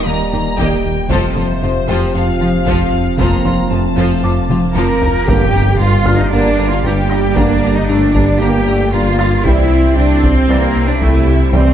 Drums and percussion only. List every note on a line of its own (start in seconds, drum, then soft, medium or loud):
0.59 taiko medium
1.10 taiko medium
2.67 taiko medium
3.19 taiko medium
4.50 taiko mid medium
4.76 taiko low-mid medium
5.02 taiko low medium
5.28 taiko loud
6.06 taiko loud
6.84 taiko medium
7.11 taiko rim soft
7.37 taiko loud
8.15 taiko medium
8.93 taiko medium
9.45 taiko loud
10.23 taiko medium
11.02 taiko medium
11.53 taiko loud